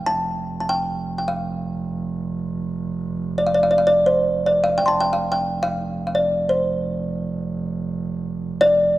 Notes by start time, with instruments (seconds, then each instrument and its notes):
0.06 double bass F1, kalimba A5
0.60 kalimba A5
0.69 kalimba G5
1.18 kalimba G5
1.28 kalimba F5
3.38 kalimba D5
3.47 kalimba F5
3.54 kalimba D5
3.63 kalimba F5
3.71 kalimba D5
3.78 kalimba F5
3.87 kalimba D5
4.06 kalimba C5
4.46 kalimba D5
4.64 kalimba F5
4.78 kalimba G5
4.86 kalimba A5 C6
4.90 double bass F1
5.00 kalimba G5
5.13 kalimba F5
5.32 kalimba G5
5.63 kalimba F5
6.07 kalimba F5
6.15 kalimba D5
6.49 kalimba C5
8.61 kalimba D5